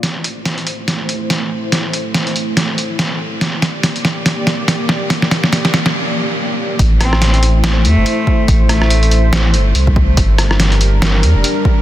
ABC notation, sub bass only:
X:1
M:4/4
L:1/16
Q:"Swing 16ths" 1/4=142
K:Aphr
V:1 name="Sub bass" clef=bass
A,,,8- A,,,2 E,, G,,, z4 | A,,,8- A,,,2 G,,,2 C,,4 | G,,,8- G,,,2 E,, F,,, z4 | z16 |
A,,,8- A,,,2 E,, G,,, z4 | A,,,8- A,,,2 G,,,2 C,,4 | G,,,8- G,,,2 E,, F,,, z4 |]